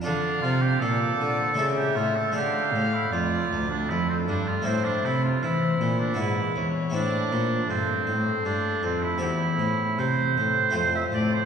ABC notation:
X:1
M:3/4
L:1/16
Q:1/4=78
K:Dm
V:1 name="Violin"
f4 d4 e4 | f4 d4 A4 | c4 c4 =B2 ^c2 | d2 c2 A8 |
[K:Cmix] G2 c8- c2 |]
V:2 name="Oboe"
D2 F G A4 A G F A | G3 E F3 D E C D F | C D E F E3 D E3 z | D4 C4 D2 C E |
[K:Cmix] E4 c4 c e d c |]
V:3 name="Harpsichord"
[DFA]8 [A,EA]4 | [A,D]12 | [A,CE]8 [=B,E]4 | [A,CE]12 |
[K:Cmix] [CG]8 [A,CF]4 |]
V:4 name="Harpsichord" clef=bass
D,2 C,2 B,,2 D,2 ^C,2 A,,2 | D,2 A,,2 F,,2 D,,2 F,,2 G,,2 | A,,2 C,2 E,2 B,,2 ^G,,2 E,,2 | A,,2 B,,2 G,,2 A,,2 G,,2 F,,2 |
[K:Cmix] E,,2 A,,2 C,2 A,,2 F,,2 A,,2 |]
V:5 name="Cello" clef=bass
D,2 C,2 B,,2 D,2 ^C,2 A,,2 | D,2 A,,2 F,,2 D,,2 F,,2 G,,2 | A,,2 C,2 E,2 B,,2 ^G,,2 E,,2 | A,,2 B,,2 G,,2 A,,2 G,,2 F,,2 |
[K:Cmix] E,,2 A,,2 C,2 A,,2 F,,2 A,,2 |]